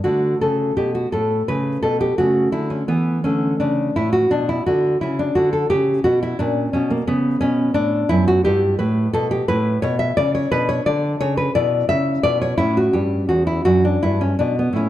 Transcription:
0.04 D3 A3 F#4
0.41 C#3 A4
0.77 B2 G4
0.95 F#4
1.12 A2 A4
1.48 C#3 B4
1.82 B2 A4
2.01 G4
2.18 C#3 A3 F#4
2.52 D3 E4
2.70 C#4
2.88 E3 B3
3.24 D3 A3 C#4
3.60 C#3 D4
3.96 A2 E4
4.13 F#4
4.31 B2 D4
4.49 E4
4.66 D3 F#4
5.01 C#3 E4
5.19 D4
5.35 D3 F#4
5.53 A4
5.70 C#3 G4
6.04 B2 F#4
6.23 E4
6.39 A#2 C#4 D4
6.73 B2 C#4
6.90 A#3
7.07 C#3 B3
7.41 B2 B3 C#4
7.74 A2 D4
8.09 F#2 E4
8.28 F#4
8.45 G2 E4 G4
8.79 A2 B4
9.13 B2 A4
9.31 G4
9.48 A2 E4 B4
9.82 B2 C#5
9.99 E5
10.17 C#3 D5
10.35 C#5
10.51 B2 D4 B4
10.69 C#5
10.86 D3 D5
11.20 C#3 C#5
11.37 B4
11.55 B2 E4 D5
11.89 C#3 E5
12.23 B2 D5
12.42 C#5
12.58 A2 C#4 E4
12.77 F#4
12.93 G2 G4
13.29 E2 F#4
13.47 E4
13.65 F#2 D4 F#4
13.85 D4
14.03 G2 E4
14.21 C#4
14.39 B2 D4
14.59 B3
14.73 A2 A3 C#4 E4

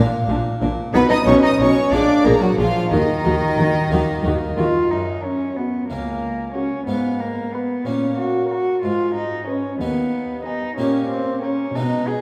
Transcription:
Already playing: A#2 A#3 D4 F4
0.29 A#1 A#2 D4
0.61 A#1 A#2 D4
0.93 B1 B2 B3 D#4 B4 B5
1.10 D#4 D#5 D#6
1.26 B1 B2 C#4 D#4 C#5 C#6
1.42 D#4 D#5 D#6
1.59 B1 B2 C#4 D#4 C#5 C#6
1.92 A#1 A#2 G#3 A#3 D4 F4 G#4 D5 D6
2.25 A#1 A#2 A#3 G#4 A#4 A#5
2.41 F#3 F#4 F#5
2.58 A#1 A#2 F3 F4 G#4 F5
2.91 D#2 D#3 D#4 F#4 D#5
3.25 D#2 D#3 F#4
3.58 D#2 D#3 F#4
3.91 D#2 D#3 A#3 D#4 F#4
4.24 D#2 D#3 F#4
4.57 D#2 D#3 F4 F#4
4.91 F#2 D#4
5.24 C#4
5.57 B3 F#4 C#5 F#5
5.89 C#2 A#3 C#4
6.54 C#4 F#4 C#5 F#5
6.87 G#2 B3 F4
7.20 A#3
7.52 B3 B4 F5
7.85 A#2 A#3 C#4
8.18 F#4
8.50 F#4 A#4 C#5 F#5
8.83 G#2 F4
9.15 D#4
9.47 C#4 B4 D#5 G#5
9.80 D#2 B3 D#4
10.45 D#4 B4 D#5 G#5
10.78 A#2 A#3 C#4 G4
11.10 C4
11.42 C#4 A#4 C#5 G5
11.75 B2 G#3 B3 D#4
12.08 G#4

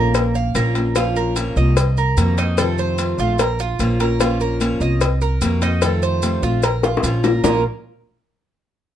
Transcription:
Already playing: A#1 A3 A#3 C4 C#4 F4 A#4
0.14 muted steel-string acoustic guitar stroke, cowbell, maracas
0.35 F5, maracas
0.55 A#1 F3 A#3 C#4 F4 A#4, cowbell, maracas
0.75 A#3 C#4 F4, cowbell, maracas
0.95 F3 A#3 C#4 F4, cowbell, maracas
1.16 A#4, maracas
1.36 F3 A#3 C#4 F4, cowbell, maracas
1.56 C2 A#3 C#4 F4 D#5, maracas
1.77 muted steel-string acoustic guitar stroke, cowbell, maracas
1.97 A#4, maracas
2.17 F2 C3 D#3 A#3 C4 F#4, cowbell, maracas
2.37 A#3 C4 D#4 F#4, cowbell, maracas
2.57 C3 D#3 A3 C4 F4 A4, cowbell, maracas
2.78 C5, maracas
2.98 C3 D#3 A3 C4 F4, cowbell, maracas
3.18 A#1 A3 C4 F4, maracas
3.39 A#4, muted steel-string acoustic guitar stroke, cowbell, maracas
3.59 F4, maracas
3.79 A#1 F3 A#3 C#4 F4, cowbell, maracas
4.00 A#3 C#4 F4 A#4, cowbell, maracas
4.20 F3 A#3 C#4 F4, cowbell, maracas
4.40 A#4, maracas
4.60 F3 A#3 C#4 F4, cowbell, maracas
4.80 C2 A#3 C#4 F4 D#5, maracas
5.01 muted steel-string acoustic guitar stroke, cowbell, maracas
5.21 A#4, maracas
5.41 F2 C3 D#3 A#3 C4 F#4, cowbell, maracas
5.62 A#3 C4 D#4 F#4, cowbell, maracas
5.82 C3 D#3 A3 C4 F4 A4, cowbell, maracas
6.02 C5, maracas
6.22 C3 D#3 A3 C4 F4, cowbell, maracas
6.42 A#1 A3 C4 F4, maracas
6.62 A#4, muted steel-string acoustic guitar stroke, cowbell, maracas
6.83 F4, high bongo, maracas
6.97 high bongo
7.03 A#1 F3 A#3 C#4 F4, cowbell, maracas
7.23 A#3 C#4 F4 A#4, cowbell, low bongo, maracas
7.44 A#1 A#2 F3 A#3 C#4 F4 A#4, low bongo, maracas

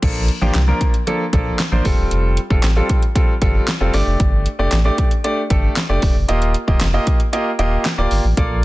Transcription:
0.02 A#1 F3 A#3 D4 A4, kick, closed hi-hat, crash
0.28 closed hi-hat
0.41 A1 F3 A#3 D4 G4
0.55 C2, snare, clap, closed hi-hat
0.68 F3 A#3 D4 A#4
0.81 kick, closed hi-hat
0.94 closed hi-hat
1.07 F3 A#3 D4 A4, closed hi-hat
1.33 A#1 F3 A#3 D4 A4, kick, closed hi-hat
1.59 snare, clap, closed hi-hat
1.72 A1 F3 A#3 D4 C5
1.85 F1 G3 C4 F4 A4, kick, open hi-hat
1.98 D#1
2.11 F1, closed hi-hat
2.37 closed hi-hat
2.50 F1 G3 C4 F4 A4, kick
2.63 A1, snare, clap, closed hi-hat
2.76 G3 C4 F4 A4
2.89 kick, closed hi-hat
3.02 closed hi-hat
3.15 G3 C4 F4 A4, kick, closed hi-hat
3.41 G1 G3 C4 F4 A4, kick, closed hi-hat
3.68 snare, clap, closed hi-hat
3.80 F1 G3 C4 F4 A4
3.94 G1 A3 D4 G4 D5, open hi-hat
4.07 F1
4.20 G1, kick, closed hi-hat
4.46 closed hi-hat
4.59 F1 A3 D4 G4 D5
4.72 A1, snare, clap, closed hi-hat
4.85 A3 D4 G4 D5
4.98 kick, closed hi-hat
5.11 closed hi-hat
5.24 A3 D4 G4 D5, closed hi-hat
5.50 G1 A3 D4 G4 A4, kick, closed hi-hat
5.76 snare, clap, closed hi-hat
5.89 F1 A3 D4 G4 D5
6.02 D#1, kick, open hi-hat
6.16 F1
6.28 D#1 A#3 F4 G4 D#5, closed hi-hat
6.42 closed hi-hat
6.54 closed hi-hat
6.67 D1 A#3 F4 G4 D#5, kick
6.81 F1, snare, clap, closed hi-hat
6.94 A#3 F4 G4 D#5
7.07 kick, closed hi-hat
7.20 closed hi-hat
7.33 A#3 F4 G4 D#5, closed hi-hat
7.59 D#1 A#3 F4 G4 D#5, closed hi-hat
7.85 snare, clap, closed hi-hat
7.98 D1 A#3 F4 G4 D5
8.11 G1, open hi-hat
8.24 A1
8.37 A#1 A#3 F4 A4 D5, kick, closed hi-hat

